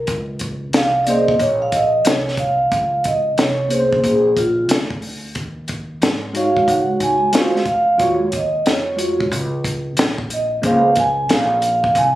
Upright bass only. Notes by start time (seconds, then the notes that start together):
0.08 C#2
0.74 C2
1.39 A#1
2.06 C2
2.72 C#2
3.38 C2
4.04 A#1
4.70 D2
5.35 D#2
6.02 G#2
6.68 C#2
7.34 D2
8.00 D#2
8.66 F2
9.31 C#2
9.98 A#1
10.64 C#2
11.29 A#1
11.95 C2